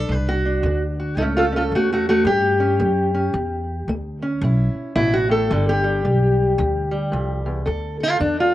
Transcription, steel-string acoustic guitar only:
0, 0, Header, 1, 2, 480
1, 0, Start_track
1, 0, Tempo, 541028
1, 1036, Time_signature, 4, 2, 24, 8
1, 7579, End_track
2, 0, Start_track
2, 0, Title_t, "Steel-string acoustic guitar"
2, 0, Program_c, 0, 25
2, 0, Note_on_c, 0, 62, 46
2, 0, Note_on_c, 0, 69, 94
2, 95, Note_off_c, 0, 69, 0
2, 99, Note_on_c, 0, 45, 59
2, 104, Note_on_c, 0, 71, 94
2, 249, Note_off_c, 0, 71, 0
2, 254, Note_on_c, 0, 66, 109
2, 381, Note_off_c, 0, 62, 0
2, 402, Note_on_c, 0, 62, 48
2, 530, Note_off_c, 0, 45, 0
2, 583, Note_on_c, 0, 50, 58
2, 725, Note_off_c, 0, 66, 0
2, 884, Note_on_c, 0, 66, 52
2, 1011, Note_off_c, 0, 50, 0
2, 1031, Note_off_c, 0, 62, 0
2, 1047, Note_on_c, 0, 65, 77
2, 1049, Note_off_c, 0, 66, 0
2, 1049, Note_on_c, 0, 69, 92
2, 1066, Note_on_c, 0, 45, 77
2, 1071, Note_on_c, 0, 57, 52
2, 1083, Note_on_c, 0, 61, 55
2, 1088, Note_off_c, 0, 65, 0
2, 1201, Note_off_c, 0, 69, 0
2, 1212, Note_on_c, 0, 65, 84
2, 1223, Note_on_c, 0, 69, 89
2, 1283, Note_off_c, 0, 65, 0
2, 1348, Note_off_c, 0, 61, 0
2, 1351, Note_on_c, 0, 61, 48
2, 1369, Note_off_c, 0, 69, 0
2, 1385, Note_on_c, 0, 65, 79
2, 1392, Note_on_c, 0, 69, 86
2, 1434, Note_off_c, 0, 65, 0
2, 1492, Note_off_c, 0, 45, 0
2, 1534, Note_off_c, 0, 69, 0
2, 1551, Note_off_c, 0, 57, 0
2, 1554, Note_on_c, 0, 57, 81
2, 1561, Note_on_c, 0, 66, 81
2, 1695, Note_off_c, 0, 57, 0
2, 1697, Note_off_c, 0, 66, 0
2, 1708, Note_on_c, 0, 57, 71
2, 1716, Note_on_c, 0, 66, 83
2, 1842, Note_off_c, 0, 66, 0
2, 1847, Note_off_c, 0, 57, 0
2, 1853, Note_on_c, 0, 66, 94
2, 1858, Note_on_c, 0, 57, 92
2, 2003, Note_off_c, 0, 66, 0
2, 2006, Note_off_c, 0, 57, 0
2, 2009, Note_on_c, 0, 45, 70
2, 2011, Note_on_c, 0, 67, 113
2, 2296, Note_off_c, 0, 61, 0
2, 2306, Note_on_c, 0, 61, 50
2, 2444, Note_off_c, 0, 45, 0
2, 2480, Note_on_c, 0, 57, 64
2, 2774, Note_off_c, 0, 61, 0
2, 2789, Note_on_c, 0, 61, 50
2, 2918, Note_off_c, 0, 57, 0
2, 2944, Note_off_c, 0, 61, 0
2, 2961, Note_on_c, 0, 45, 70
2, 3399, Note_off_c, 0, 45, 0
2, 3440, Note_off_c, 0, 67, 0
2, 3452, Note_on_c, 0, 57, 77
2, 3748, Note_on_c, 0, 61, 55
2, 3885, Note_off_c, 0, 57, 0
2, 3935, Note_on_c, 0, 45, 67
2, 3944, Note_on_c, 0, 64, 53
2, 4366, Note_off_c, 0, 45, 0
2, 4386, Note_off_c, 0, 64, 0
2, 4397, Note_on_c, 0, 64, 115
2, 4408, Note_on_c, 0, 47, 65
2, 4555, Note_off_c, 0, 64, 0
2, 4557, Note_on_c, 0, 66, 97
2, 4691, Note_off_c, 0, 47, 0
2, 4696, Note_on_c, 0, 45, 63
2, 4711, Note_off_c, 0, 66, 0
2, 4714, Note_on_c, 0, 69, 87
2, 4864, Note_off_c, 0, 61, 0
2, 4881, Note_off_c, 0, 45, 0
2, 4893, Note_on_c, 0, 43, 69
2, 4897, Note_on_c, 0, 50, 55
2, 4903, Note_on_c, 0, 55, 51
2, 5035, Note_off_c, 0, 69, 0
2, 5048, Note_on_c, 0, 67, 106
2, 5170, Note_off_c, 0, 55, 0
2, 5181, Note_on_c, 0, 55, 50
2, 5326, Note_off_c, 0, 43, 0
2, 5356, Note_off_c, 0, 50, 0
2, 5367, Note_on_c, 0, 50, 73
2, 5804, Note_off_c, 0, 50, 0
2, 5854, Note_on_c, 0, 50, 69
2, 6123, Note_off_c, 0, 55, 0
2, 6133, Note_on_c, 0, 55, 55
2, 6288, Note_off_c, 0, 50, 0
2, 6315, Note_on_c, 0, 41, 70
2, 6485, Note_off_c, 0, 67, 0
2, 6606, Note_off_c, 0, 41, 0
2, 6618, Note_on_c, 0, 40, 64
2, 6789, Note_off_c, 0, 40, 0
2, 6793, Note_on_c, 0, 38, 80
2, 6796, Note_on_c, 0, 69, 54
2, 6802, Note_off_c, 0, 55, 0
2, 7087, Note_off_c, 0, 69, 0
2, 7100, Note_on_c, 0, 69, 52
2, 7127, Note_on_c, 0, 65, 107
2, 7240, Note_off_c, 0, 38, 0
2, 7268, Note_on_c, 0, 50, 78
2, 7276, Note_off_c, 0, 65, 0
2, 7279, Note_on_c, 0, 62, 94
2, 7441, Note_off_c, 0, 62, 0
2, 7454, Note_on_c, 0, 65, 90
2, 7579, Note_off_c, 0, 50, 0
2, 7579, Note_off_c, 0, 65, 0
2, 7579, Note_off_c, 0, 69, 0
2, 7579, End_track
0, 0, End_of_file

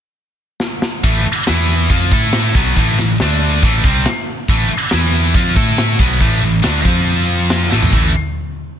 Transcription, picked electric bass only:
0, 0, Header, 1, 3, 480
1, 0, Start_track
1, 0, Key_signature, 0, "minor"
1, 0, Tempo, 431344
1, 1151, Time_signature, 4, 2, 24, 8
1, 9788, End_track
2, 0, Start_track
2, 0, Title_t, "Picked electric bass"
2, 0, Program_c, 0, 34
2, 1155, Note_on_c, 0, 33, 88
2, 1376, Note_off_c, 0, 33, 0
2, 1661, Note_on_c, 0, 40, 86
2, 2093, Note_off_c, 0, 40, 0
2, 2117, Note_on_c, 0, 41, 92
2, 2337, Note_off_c, 0, 41, 0
2, 2362, Note_on_c, 0, 45, 103
2, 2803, Note_off_c, 0, 45, 0
2, 2838, Note_on_c, 0, 35, 100
2, 3058, Note_off_c, 0, 35, 0
2, 3086, Note_on_c, 0, 33, 84
2, 3302, Note_off_c, 0, 33, 0
2, 3342, Note_on_c, 0, 33, 82
2, 3551, Note_off_c, 0, 33, 0
2, 3570, Note_on_c, 0, 38, 91
2, 4008, Note_off_c, 0, 38, 0
2, 4041, Note_on_c, 0, 33, 94
2, 4260, Note_off_c, 0, 33, 0
2, 4276, Note_on_c, 0, 36, 107
2, 4498, Note_off_c, 0, 36, 0
2, 4996, Note_on_c, 0, 33, 86
2, 5218, Note_off_c, 0, 33, 0
2, 5491, Note_on_c, 0, 40, 91
2, 5930, Note_off_c, 0, 40, 0
2, 5953, Note_on_c, 0, 41, 85
2, 6177, Note_off_c, 0, 41, 0
2, 6194, Note_on_c, 0, 45, 96
2, 6641, Note_off_c, 0, 45, 0
2, 6674, Note_on_c, 0, 35, 94
2, 6898, Note_off_c, 0, 35, 0
2, 6914, Note_on_c, 0, 33, 84
2, 7138, Note_off_c, 0, 33, 0
2, 7155, Note_on_c, 0, 33, 73
2, 7379, Note_off_c, 0, 33, 0
2, 7392, Note_on_c, 0, 38, 89
2, 7617, Note_off_c, 0, 38, 0
2, 7624, Note_on_c, 0, 41, 92
2, 8545, Note_off_c, 0, 41, 0
2, 8602, Note_on_c, 0, 33, 97
2, 8816, Note_off_c, 0, 33, 0
2, 8822, Note_on_c, 0, 33, 85
2, 9051, Note_off_c, 0, 33, 0
2, 9788, End_track
3, 0, Start_track
3, 0, Title_t, "Muted picked electric bass strokes"
3, 1412, Note_on_c, 9, 29, 41
3, 1523, Note_off_c, 9, 29, 0
3, 5245, Note_on_c, 9, 29, 42
3, 5356, Note_off_c, 9, 29, 0
3, 9788, End_track
0, 0, End_of_file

